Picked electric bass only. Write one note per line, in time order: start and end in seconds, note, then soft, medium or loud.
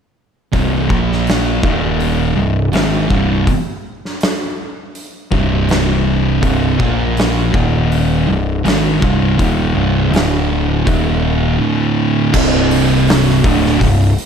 0.53 0.87 C1 medium
0.90 1.59 A#1 medium
1.64 2.33 D#1 medium
2.37 2.71 C1 medium
2.73 3.08 G#1 medium
3.10 3.45 C1 medium
5.32 6.39 C1 medium
6.43 6.77 C1 medium
6.80 7.50 A#1 medium
7.54 8.24 D#1 medium
8.28 8.62 C1 medium
8.65 8.99 G#1 medium
9.02 9.36 C1 loud
9.39 9.73 D#1 medium
9.75 10.09 C1 medium
10.11 10.81 D1 loud
10.87 11.56 D#1 medium
12.34 13.40 C1 loud
13.44 13.78 D1 loud
13.81 14.15 C1 medium